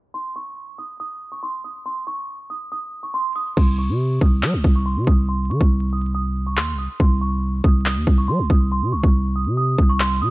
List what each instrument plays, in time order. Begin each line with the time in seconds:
0.14 celesta C6
0.36 celesta C#6
0.78 celesta D#6
1.00 celesta D#6
1.32 celesta C#6
1.43 celesta C6
1.64 celesta D#6
1.86 celesta C6
2.07 celesta C#6
2.50 celesta D#6
2.72 celesta D#6
3.03 celesta C#6
3.14 celesta C6
3.36 celesta D#6
3.57 808-style bass C2, celesta C6, kick, crash
3.78 celesta C#6
3.89 808-style bass C3
4.21 808-style bass C2, celesta D#6, kick
4.43 808-style bass G3, celesta D#6, clap
4.54 808-style bass C2
4.64 808-style bass C2, kick
4.75 celesta C#6
4.86 celesta C6
4.96 808-style bass C3
5.07 808-style bass C2, celesta D#6, kick
5.29 celesta C6
5.50 808-style bass D#3, celesta C#6
5.61 808-style bass C2, kick
5.93 celesta D#6
6.15 celesta D#6
6.46 celesta C#6
6.57 808-style bass D#2, celesta C6, clap
6.73 808-style bass C2
6.78 celesta D#6
7.00 808-style bass C2, celesta C6, kick
7.21 celesta C#6
7.64 808-style bass C2, celesta D#6, kick
7.86 celesta D#6, clap
7.96 808-style bass D#2
8.07 808-style bass C2, kick
8.18 celesta C#6
8.28 808-style bass G3, celesta C6
8.39 808-style bass C2
8.50 808-style bass C2, celesta D#6, kick
8.72 celesta C6
8.82 808-style bass C3
8.92 808-style bass C2, celesta C#6
9.03 808-style bass C2, kick
9.36 celesta D#6
9.46 808-style bass C3
9.57 celesta D#6
9.78 808-style bass C2, kick
9.89 celesta C#6
10.00 celesta C6, clap
10.21 808-style bass C3, celesta D#6